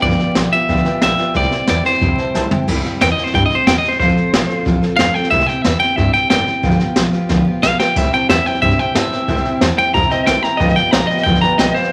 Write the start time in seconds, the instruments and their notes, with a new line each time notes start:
0.01 upright bass G1, steel-string acoustic guitar G2 D3 F3 B3 F4 G4, upright piano B4 D5 G5, clean electric guitar D5, kick, snare
0.11 snare
0.18 steel-string acoustic guitar F3 B3 F4 G4, upright piano B4 D5 G5, muted upright bass stroke, snare
0.35 upright bass B1, steel-string acoustic guitar F3 B3 F4 G4, upright piano B4 D5 G5, snare, hi-hat pedal
0.52 steel-string acoustic guitar F3 B3 F4 G4, upright piano B4 D5 G5, clean electric guitar E5, muted upright bass stroke, snare
0.68 upright bass D2, steel-string acoustic guitar G2 D3 F3 B3 F4 G4, upright piano B4 D5 G5, kick, snare
0.77 snare
0.84 steel-string acoustic guitar F3 B3 F4 G4, upright piano B4 D5 G5, muted upright bass stroke, snare
1.01 upright bass B1, steel-string acoustic guitar F3 B3 F4 G4, upright piano B4 D5 G5, clean electric guitar E5, snare, hi-hat pedal
1.17 steel-string acoustic guitar F3 B3 F4 G4, upright piano B4 D5 G5, muted upright bass stroke, snare
1.34 upright bass C2, steel-string acoustic guitar C3 G3 C4 E4 G4, upright piano C5 E5 G5, clean electric guitar D5, kick, snare
1.42 snare
1.51 steel-string acoustic guitar C4 E4 G4, upright piano C5 E5, muted upright bass stroke, snare
1.67 upright bass E2, steel-string acoustic guitar G3 C4 E4 G4, upright piano C5 E5 G5, clean electric guitar D5, snare, hi-hat pedal
1.83 steel-string acoustic guitar C4 E4 G4, upright piano C5 E5 G5, clean electric guitar C5, muted upright bass stroke, snare
1.93 snare
2.00 upright bass F2, steel-string acoustic guitar C3 G3 C4 E4 G4, upright piano C5 E5 G5, kick, snare
2.18 steel-string acoustic guitar C4 E4 G4, upright piano C5 E5 A5, muted upright bass stroke, snare
2.34 upright bass C2, steel-string acoustic guitar G3 C4 E4 G4, upright piano C5 E5 A5, snare, hi-hat pedal
2.50 steel-string acoustic guitar C4 E4 G4, upright piano C5 E5 G5, muted upright bass stroke, floor tom
2.67 upright bass C2, steel-string acoustic guitar C3 G3 C4 E4 G4, kick, snare, crash
2.76 snare
2.84 steel-string acoustic guitar C4 E4 G4, muted upright bass stroke, snare
3.00 upright bass E2, steel-string acoustic guitar G3 C4 E4, clean electric guitar G5, snare, hi-hat pedal
3.12 clean electric guitar D#5
3.17 steel-string acoustic guitar C4 E4 G4, muted upright bass stroke, snare
3.24 clean electric guitar C5, snare
3.34 upright bass G2, steel-string acoustic guitar C3 G3 C4 E4 G4, clean electric guitar G5, kick, snare
3.46 clean electric guitar D#5
3.50 steel-string acoustic guitar C4 E4 G4, muted upright bass stroke, snare
3.55 clean electric guitar C5
3.67 upright bass E2, steel-string acoustic guitar G3 C4 E4 G4, clean electric guitar G5, snare, hi-hat pedal
3.78 clean electric guitar D#5
3.83 steel-string acoustic guitar C4 E4 G4, muted upright bass stroke, snare
3.89 clean electric guitar C5, snare
4.00 upright bass F1, steel-string acoustic guitar F3 C4 F4 A4, clean electric guitar C5, kick, snare
4.09 snare
4.16 steel-string acoustic guitar C4 F4 A4, muted upright bass stroke, snare
4.33 upright bass A1, steel-string acoustic guitar F3 C4 F4 A4, snare, hi-hat pedal
4.49 steel-string acoustic guitar C4 F4 A4, muted upright bass stroke, snare
4.65 upright bass A1, steel-string acoustic guitar F3 C4 F4 A4, kick, snare
4.82 steel-string acoustic guitar C4 F4 A4, muted upright bass stroke, snare
4.97 upright bass F1, steel-string acoustic guitar F3 C4 F4 A4, clean electric guitar F5, snare, hi-hat pedal
5.14 steel-string acoustic guitar C4 F4 A4, clean electric guitar G5, muted upright bass stroke, snare
5.24 snare
5.31 upright bass C2, steel-string acoustic guitar C3 G3 C4 E4 G4, clean electric guitar E5, kick, snare
5.40 snare
5.47 steel-string acoustic guitar E4 G4, clean electric guitar G5, muted upright bass stroke, snare
5.51 steel-string acoustic guitar C4
5.62 upright bass E2, steel-string acoustic guitar G3 C4, clean electric guitar E5, snare, hi-hat pedal
5.67 steel-string acoustic guitar E4 G4
5.80 steel-string acoustic guitar C4 E4 G4, clean electric guitar G5, muted upright bass stroke, snare
5.96 upright bass G2, steel-string acoustic guitar C3 G3 C4 E4 G4, clean electric guitar E5, kick, snare
6.14 steel-string acoustic guitar C4 E4 G4, clean electric guitar G5, muted upright bass stroke, snare
6.30 upright bass F#1, steel-string acoustic guitar G3 C4 E4 G4, clean electric guitar G5, snare, hi-hat pedal
6.46 steel-string acoustic guitar C4 E4 G4, muted upright bass stroke, snare
6.63 upright bass G1, steel-string acoustic guitar G2 D3 F3 B3 F4 G4, kick, snare
6.71 snare
6.79 steel-string acoustic guitar F3 B3 F4 G4, muted upright bass stroke, snare
6.96 upright bass B1, steel-string acoustic guitar F3 B3 F4 G4, snare, hi-hat pedal
7.13 steel-string acoustic guitar B3 F4 G4, muted upright bass stroke, snare
7.17 steel-string acoustic guitar F3
7.29 upright bass C2, steel-string acoustic guitar G2 D3 F3 B3 F4 G4, kick, snare
7.46 steel-string acoustic guitar F3 B3 F4 G4, muted upright bass stroke
7.62 upright bass B1, steel-string acoustic guitar F3 B3 F4 G4, clean electric guitar F5, snare, hi-hat pedal
7.78 steel-string acoustic guitar F3 B3 F4 G4, clean electric guitar G5, muted upright bass stroke, snare
7.96 upright bass C2, steel-string acoustic guitar C3 G3 C4 E4 G4, upright piano C5 E5 G5, clean electric guitar E5, kick, snare, splash
8.04 snare
8.12 steel-string acoustic guitar C4 E4 G4, upright piano C5 E5 A5, clean electric guitar G5, muted upright bass stroke, snare
8.28 upright bass E2, steel-string acoustic guitar G3 C4 E4, upright piano C5 E5 G5, clean electric guitar E5, snare, hi-hat pedal
8.45 steel-string acoustic guitar C4 E4 G4, upright piano C5 E5 G5, clean electric guitar G5, muted upright bass stroke, snare
8.54 snare
8.61 upright bass G2, steel-string acoustic guitar C3 G3 C4 E4 G4, upright piano C5 E5 G5, clean electric guitar E5, kick, snare
8.71 snare
8.78 steel-string acoustic guitar C4 E4 G4, upright piano C5 E5 G5, clean electric guitar G5, muted upright bass stroke, snare
8.94 upright bass A2, steel-string acoustic guitar G3 C4 E4 G4, upright piano C5 E5 A5, clean electric guitar E5, snare, hi-hat pedal
9.11 steel-string acoustic guitar C4 E4 G4, upright piano C5 E5 G5, muted upright bass stroke, snare
9.28 upright bass C2, steel-string acoustic guitar C3 G3 C4 E4 G4, upright piano C5 E5 G5, kick, snare
9.37 snare
9.44 steel-string acoustic guitar C4 E4 G4, upright piano C5 E5 G5, muted upright bass stroke, snare
9.60 upright bass E2, steel-string acoustic guitar G3 C4 E4 G4, upright piano C5 E5 A5, snare, hi-hat pedal
9.77 steel-string acoustic guitar C4 E4 G4, upright piano C5 E5 G5, clean electric guitar G5, muted upright bass stroke, snare
9.93 upright bass F2, steel-string acoustic guitar C3 G3 C4 E4 G4, upright piano C5 E5 A5, clean electric guitar A#5, kick, snare
10.03 snare
10.09 steel-string acoustic guitar C4 E4 G4, upright piano C5 E5 G5, clean electric guitar D#5, muted upright bass stroke, snare
10.25 upright bass C2, steel-string acoustic guitar G3 C4 E4, upright piano C5 E5 G5, clean electric guitar G5, snare, hi-hat pedal
10.42 steel-string acoustic guitar C4 E4 G4, upright piano C5 E5 G5, clean electric guitar A#5, muted upright bass stroke, snare
10.57 upright bass G1, steel-string acoustic guitar G2 D3 F3 B3 F4 G4, upright piano B4 D5 G5, clean electric guitar D#5, kick, snare
10.69 snare
10.76 steel-string acoustic guitar F3 B3 F4 G4, upright piano B4 D5 G5, clean electric guitar G5, muted upright bass stroke, snare
10.91 upright bass B1, steel-string acoustic guitar F3 B3 F4 G4, upright piano B4 D5 F5, clean electric guitar A#5, snare, hi-hat pedal
11.07 steel-string acoustic guitar G4, upright piano B4 D5 G5, clean electric guitar D#5, muted upright bass stroke, snare
11.11 steel-string acoustic guitar F3 B3 F4
11.18 snare
11.23 upright bass D2, steel-string acoustic guitar G2 D3 F3 B3 F4 G4, upright piano B4 D5 G5, clean electric guitar G5, kick, snare
11.35 snare
11.41 steel-string acoustic guitar F3 B3 F4 G4, upright piano B4 D5 G5, clean electric guitar A#5, muted upright bass stroke, snare
11.58 upright bass B1, steel-string acoustic guitar F3 B3 F4, upright piano B4 D5 G5, clean electric guitar D#5, snare, hi-hat pedal
11.74 steel-string acoustic guitar B3 F4 G4, upright piano B4 D5 F5, clean electric guitar C5, muted upright bass stroke, snare
11.78 steel-string acoustic guitar F3
11.84 snare